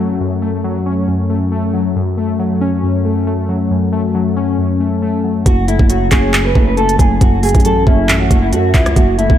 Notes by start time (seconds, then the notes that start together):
Already playing: F#2 A3 C#4
0.00 F#3
0.20 F#2
0.42 A3
0.64 F#3
0.86 C#4
1.08 F#2
1.30 A3
1.52 A3
1.74 F#3
1.96 F#2
2.18 A3
2.39 F#3
2.61 C#4
2.83 F#2
3.05 A3
3.27 A3
3.49 F#3
3.71 F#2
3.93 A3
4.14 F#3
4.37 C#4
4.58 F#2
4.80 A3
5.02 A3
5.24 F#3
5.46 F#1 F#2 F#4, kick, closed hi-hat
5.68 A3 E4, closed hi-hat
5.79 F#1, kick
5.90 F#3 F#4, closed hi-hat
6.11 F#1 C#4 G#4, kick, clap, closed hi-hat
6.34 F#2, clap, closed hi-hat
6.45 B4
6.55 F#1 A3, kick
6.67 B4
6.77 A3 A4, closed hi-hat
6.89 closed hi-hat
6.99 F#1 F#3 G#4, kick, closed hi-hat
7.21 F#1 F#2 F#4, kick, closed hi-hat
7.43 A3 G#4, closed hi-hat, open hi-hat
7.49 closed hi-hat
7.55 A1, kick, closed hi-hat
7.60 closed hi-hat
7.65 F#3 A4, closed hi-hat
7.87 F#1 C#4 E4, kick
8.09 A1 F#2, clap, closed hi-hat
8.20 F#4
8.31 F#1 A3, kick, closed hi-hat
8.42 E4
8.52 F#2 A3 F#4, closed hi-hat
8.74 C#2 F#3 E4, kick, clap, closed hi-hat
8.86 cross-stick, closed hi-hat
8.96 F#1 F#2 F#4, kick, closed hi-hat, riser
9.18 A3 E4, closed hi-hat
9.30 F#1, kick